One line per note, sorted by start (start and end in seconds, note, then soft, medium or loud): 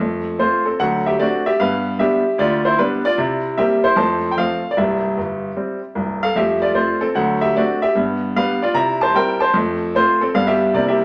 0.00 0.33 F2 medium
0.00 0.22 A3 soft
0.39 0.61 A3 soft
0.39 0.61 C4 soft
0.39 0.64 F4 soft
0.39 0.65 C5 medium
0.66 0.79 C4 medium
0.66 0.79 A4 medium
0.79 1.13 D2 medium
0.79 1.02 F#3 soft
0.79 1.04 A4 medium
0.79 1.05 F#5 medium
1.06 1.19 G4 medium
1.06 1.19 E5 medium
1.19 1.41 A3 soft
1.19 1.42 C4 soft
1.19 1.42 D4 soft
1.19 1.44 F#4 medium
1.19 1.45 D5 medium
1.46 1.59 G4 medium
1.46 1.59 E5 medium
1.60 1.93 G2 medium
1.60 1.83 B3 soft
1.60 1.97 B4 medium
1.60 1.99 F5 medium
1.99 2.21 G3 soft
1.99 2.21 B3 soft
1.99 2.21 D4 soft
1.99 2.37 G4 medium
1.99 2.39 E5 medium
2.38 2.72 D2 medium
2.38 2.64 F4 medium
2.38 2.65 D5 medium
2.65 2.78 E4 medium
2.65 2.78 C5 medium
2.79 3.00 G3 soft
2.79 3.01 B3 soft
2.79 3.04 D4 medium
2.79 3.05 B4 medium
3.05 3.18 F4 medium
3.05 3.18 D5 medium
3.18 3.52 C3 medium
3.18 3.41 E4 soft
3.57 3.79 G3 soft
3.57 3.80 A#3 soft
3.57 3.80 C4 soft
3.57 3.83 G4 medium
3.57 3.84 E5 medium
3.84 3.97 E4 medium
3.84 3.97 C5 medium
3.96 4.31 F2 medium
3.96 4.20 A3 soft
3.96 4.29 C5 medium
3.96 4.30 A5 medium
4.31 4.38 G5 medium
4.37 4.59 F3 soft
4.37 4.60 A3 soft
4.37 4.60 C4 soft
4.37 4.69 A4 soft
4.37 4.70 F5 medium
4.71 4.77 D5 medium
4.77 5.09 C1 medium
4.77 5.09 C2 medium
4.77 5.93 G4 soft
4.77 5.97 E5 medium
5.17 5.49 G1 medium
5.56 5.78 G3 soft
5.56 5.79 C4 soft
5.95 6.28 C1 soft
5.95 6.28 C2 medium
6.23 6.36 A4 medium
6.23 6.36 F5 medium
6.36 6.70 F2 medium
6.36 6.59 A3 soft
6.36 6.61 G4 medium
6.36 6.62 E5 medium
6.62 6.75 F4 soft
6.62 6.76 D5 medium
6.75 6.97 A3 soft
6.75 6.97 C4 soft
6.75 7.00 F4 soft
6.75 7.01 C5 medium
7.01 7.15 C4 medium
7.01 7.15 A4 medium
7.15 7.49 D2 medium
7.15 7.38 F#3 soft
7.15 7.40 A4 medium
7.15 7.42 F#5 medium
7.41 7.55 G4 soft
7.41 7.55 E5 medium
7.56 7.78 A3 soft
7.56 7.78 C4 soft
7.56 7.78 D4 soft
7.56 7.81 F#4 medium
7.56 7.82 D5 medium
7.82 7.95 G4 medium
7.82 7.95 E5 medium
7.95 8.29 G2 medium
7.95 8.18 B3 soft
8.36 8.58 G3 soft
8.36 8.58 B3 soft
8.36 8.58 D4 soft
8.36 8.61 B4 medium
8.36 8.62 F5 medium
8.62 8.75 F4 medium
8.62 8.75 D5 medium
8.74 9.08 C3 medium
8.74 8.98 E4 soft
8.74 9.00 E5 medium
8.74 9.01 A#5 medium
9.01 9.15 C5 medium
9.01 9.15 A5 medium
9.14 9.36 G3 soft
9.14 9.37 C4 soft
9.14 9.37 E4 soft
9.14 9.40 A#4 medium
9.14 9.41 G5 medium
9.40 9.54 C5 medium
9.40 9.54 A5 medium
9.54 9.88 F2 medium
9.54 9.77 A3 soft
9.95 10.17 A3 soft
9.95 10.17 C4 soft
9.95 10.20 F4 medium
9.95 10.21 C5 medium
10.21 10.34 C4 medium
10.21 10.34 A4 medium
10.34 10.68 G2 medium
10.34 10.56 G3 soft
10.34 10.57 B3 soft
10.34 10.57 D4 soft
10.34 10.47 F5 medium
10.47 10.72 G4 medium
10.47 10.74 E5 medium
10.74 11.05 C3 medium
10.74 10.96 G3 soft
10.74 10.96 A#3 soft
10.74 10.97 C4 soft
10.74 10.97 E4 soft
10.74 10.87 D5 medium
10.88 11.05 G4 medium
10.88 11.05 E5 medium